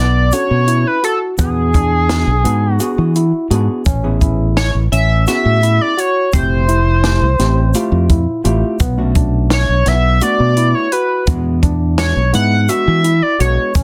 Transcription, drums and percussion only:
0.32 closed hi-hat, shaker
0.68 closed hi-hat, shaker
1.04 closed hi-hat
1.39 kick, closed hi-hat, shaker
1.74 kick, closed hi-hat, shaker
2.09 snare, closed hi-hat
2.45 closed hi-hat
2.80 closed hi-hat, shaker
3.15 closed hi-hat, shaker
3.51 closed hi-hat
3.86 kick, closed hi-hat, shaker
4.21 kick, closed hi-hat, shaker
4.57 snare, closed hi-hat
4.93 closed hi-hat
5.27 snare, closed hi-hat, shaker
5.63 closed hi-hat, shaker
5.98 closed hi-hat
6.33 kick, closed hi-hat, shaker
6.69 closed hi-hat, shaker
7.04 snare, closed hi-hat
7.39 snare, closed hi-hat, shaker
7.74 closed hi-hat, shaker
8.09 kick, closed hi-hat
8.45 closed hi-hat, shaker
8.80 kick, closed hi-hat, shaker
9.15 kick, closed hi-hat, shaker
9.50 snare, closed hi-hat
9.86 snare, closed hi-hat
10.21 closed hi-hat, shaker
10.57 closed hi-hat, shaker
10.92 closed hi-hat
11.27 kick, closed hi-hat, shaker
11.63 kick, closed hi-hat, shaker
11.98 snare, closed hi-hat
12.33 closed hi-hat
12.69 closed hi-hat, shaker
13.04 closed hi-hat, shaker
13.40 closed hi-hat
13.75 kick, closed hi-hat, shaker

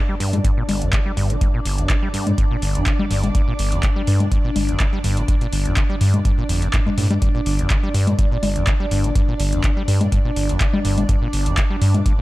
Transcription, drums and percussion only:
0.20 open hi-hat
0.33 closed hi-hat, low conga
0.44 kick, closed hi-hat
0.69 open hi-hat, low conga
0.82 closed hi-hat
0.93 kick, clap, closed hi-hat
1.17 open hi-hat
1.30 closed hi-hat
1.41 kick, closed hi-hat
1.65 open hi-hat
1.78 closed hi-hat
1.90 kick, clap, closed hi-hat
2.14 open hi-hat
2.27 closed hi-hat, low conga
2.38 kick, closed hi-hat
2.62 open hi-hat
2.75 closed hi-hat
2.86 kick, clap, closed hi-hat
2.99 low conga
3.11 open hi-hat
3.24 closed hi-hat, low conga
3.35 kick, closed hi-hat
3.59 open hi-hat
3.72 closed hi-hat
3.83 kick, clap, closed hi-hat
4.07 open hi-hat
4.20 closed hi-hat, low conga
4.32 kick, closed hi-hat
4.56 open hi-hat, low conga
4.69 closed hi-hat
4.80 kick, clap, closed hi-hat
5.04 open hi-hat
5.17 closed hi-hat
5.28 kick, closed hi-hat
5.41 closed hi-hat
5.53 open hi-hat
5.65 closed hi-hat
5.77 kick, clap, closed hi-hat
6.01 open hi-hat
6.14 closed hi-hat, low conga
6.25 kick, closed hi-hat
6.49 open hi-hat
6.62 closed hi-hat
6.73 kick, clap, closed hi-hat
6.86 low conga
6.98 open hi-hat
7.11 closed hi-hat, low conga
7.22 kick, closed hi-hat
7.46 open hi-hat
7.59 closed hi-hat
7.70 kick, clap, closed hi-hat
7.94 open hi-hat
8.07 closed hi-hat, low conga
8.19 kick, closed hi-hat
8.43 open hi-hat, low conga
8.56 closed hi-hat
8.67 kick, clap, closed hi-hat
8.91 open hi-hat
9.04 closed hi-hat
9.15 kick, closed hi-hat
9.40 open hi-hat
9.53 closed hi-hat
9.64 kick, clap, closed hi-hat
9.88 open hi-hat
10.01 closed hi-hat, low conga
10.12 kick, closed hi-hat
10.36 open hi-hat
10.49 closed hi-hat
10.60 kick, clap, closed hi-hat
10.73 low conga
10.85 open hi-hat
10.98 closed hi-hat, low conga
11.09 kick, closed hi-hat
11.33 open hi-hat
11.46 closed hi-hat
11.57 kick, clap, closed hi-hat
11.82 open hi-hat
11.94 closed hi-hat, low conga
12.06 kick, closed hi-hat

